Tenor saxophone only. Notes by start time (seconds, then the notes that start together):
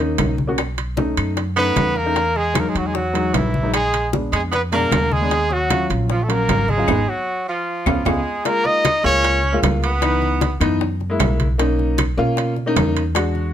1.56 B3
1.96 A#3
2.36 G#3
2.59 A#3
2.68 G#3
2.78 F#3
2.87 G#3
2.95 F#3
3.34 E3
3.73 G#3
4.32 G#3
4.52 B3
4.73 A#3
5.12 G#3
5.50 F#3
6.10 F3
6.22 A3
6.29 A#3
6.69 G#3
7.08 F#3
7.48 F3
8.06 G#3
8.45 A#3
8.65 D#4
9.04 C#4
9.84 B3